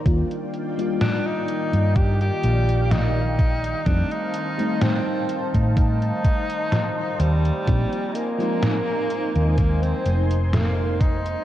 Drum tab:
HH |xxxxx-xxxxxxx-xx|xxxxx-xxxxxxx-xx|xxxxx-xxxxxxx-xx|
SD |----o-------o---|----o-------o---|----o-------o---|
BD |o-------o-----o-|o------oo-o-----|o-------o-----o-|